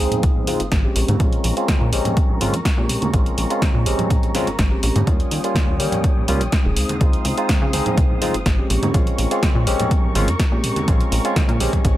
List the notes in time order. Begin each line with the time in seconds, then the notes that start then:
Already playing: C5 F5 D#6
0.00 G#3 C4 D#4 G#4
0.11 closed hi-hat, low conga, shaker
0.23 C#2, kick, closed hi-hat, shaker
0.36 low conga
0.47 G#3 C4 D#4 F4, open hi-hat, high conga, shaker
0.60 G#1, closed hi-hat, shaker
0.72 G#1, kick, snare, closed hi-hat
0.84 G#3 C4 C#4 G4
0.96 A#1 A#4 A#5 C#6, open hi-hat
1.08 G#2, closed hi-hat, high conga, shaker
1.20 A#1 G#3 C4 C#4 F4, kick, closed hi-hat, shaker
1.33 closed hi-hat
1.43 A#1, open hi-hat, shaker
1.56 G#3 C4 C#4 F4, closed hi-hat
1.68 kick, snare, closed hi-hat, high conga, shaker
1.81 A#2
1.92 A#1 G#3 C4 C#4 G4, open hi-hat, shaker
2.05 closed hi-hat, low conga, shaker
2.17 kick, closed hi-hat, shaker
2.29 low conga
2.40 G#1 G#3 C4 C#4 F4, open hi-hat, high conga, shaker
2.54 F2, closed hi-hat, shaker
2.65 kick, snare, closed hi-hat, shaker
2.77 A#2 G#3 C4 C#4 G4
2.89 A#1 A#5, open hi-hat
3.02 closed hi-hat, high conga, shaker
3.13 A#1 G#3 C4 C#4 F4, kick, closed hi-hat, shaker
3.26 closed hi-hat
3.38 A#1, open hi-hat
3.50 G#3 C4 C#4 F4, closed hi-hat, shaker
3.61 kick, snare, closed hi-hat, high conga, shaker
3.74 A#2
3.86 A#1 G#3 C4 C#4 G4, open hi-hat, shaker
3.99 closed hi-hat, low conga, shaker
4.10 A#1, kick, closed hi-hat, shaker
4.22 closed hi-hat, low conga
4.34 G#3 C4 C#4 F4, snare, open hi-hat, high conga, shaker
4.47 G#1, closed hi-hat, shaker
4.59 G#1, kick, snare, closed hi-hat
4.71 G#3 C4 C#4 G4
4.83 A#1, open hi-hat
4.96 G#2, closed hi-hat, high conga, shaker
5.07 D#2 G3 A#3 C#4 F4 C#5 G5 D#6, kick, closed hi-hat
5.20 closed hi-hat
5.31 D#2, open hi-hat, shaker
5.43 G3 A#3 C#4 F4, closed hi-hat, shaker
5.55 kick, snare, closed hi-hat, high conga, shaker
5.68 D#1
5.79 D#2 G3 A#3 C#4 G4, open hi-hat, shaker
5.92 closed hi-hat, low conga, shaker
6.03 kick, closed hi-hat, shaker
6.17 low conga
6.27 C#2 G3 A#3 C#4 F4, open hi-hat, high conga, shaker
6.41 A#1, closed hi-hat, shaker
6.52 kick, snare, closed hi-hat
6.65 D#1 G#3 C4 D#4 G#4
6.76 C#2 C5 F5, open hi-hat
6.89 closed hi-hat, high conga, shaker
7.00 C#2 G#3 C4 D#4 F4, kick, closed hi-hat, shaker
7.13 closed hi-hat
7.25 C#2, open hi-hat, shaker
7.37 G#3 C4 D#4 F4, closed hi-hat
7.49 kick, snare, closed hi-hat, high conga, shaker
7.62 C#3
7.72 C#2 G#3 C4 D#4 G#4, open hi-hat, shaker
7.85 closed hi-hat, low conga, shaker
7.97 C#2, kick, closed hi-hat
8.10 low conga
8.21 G#3 C4 D#4 F4, open hi-hat, high conga, shaker
8.34 G#1, closed hi-hat, shaker
8.46 G#1, kick, snare, closed hi-hat, shaker
8.58 G#3 C4 C#4 G4
8.69 A#1 A#4 C#6, open hi-hat, shaker
8.82 G#2, closed hi-hat, high conga, shaker
8.94 A#1 G#3 C4 C#4 F4, kick, closed hi-hat, shaker
9.07 closed hi-hat
9.18 A#1, open hi-hat, shaker
9.31 G#3 C4 C#4 F4, closed hi-hat, shaker
9.43 kick, snare, closed hi-hat, high conga, shaker
9.55 A#2
9.66 A#1 G#3 C4 C#4 G4, open hi-hat, shaker
9.80 closed hi-hat, low conga, shaker
9.91 kick, closed hi-hat, shaker
10.04 low conga
10.15 G#1 G#3 C4 C#4 F4, open hi-hat, high conga, shaker
10.28 F2, closed hi-hat, shaker
10.39 kick, snare, closed hi-hat, shaker
10.52 A#2 G#3 C4 C#4 G4
10.63 A#1, open hi-hat, shaker
10.76 closed hi-hat, high conga, shaker
10.87 A#1 G#3 C4 C#4 F4, kick, closed hi-hat, shaker
11.01 closed hi-hat
11.12 A#1, open hi-hat, shaker
11.24 G#3 C4 C#4 F4, closed hi-hat, shaker
11.36 kick, snare, closed hi-hat, high conga, shaker
11.49 A#2, closed hi-hat
11.60 A#1 G#3 C4 C#4 G4, open hi-hat, shaker
11.73 kick, closed hi-hat, low conga, shaker
11.85 A#1, kick, closed hi-hat, shaker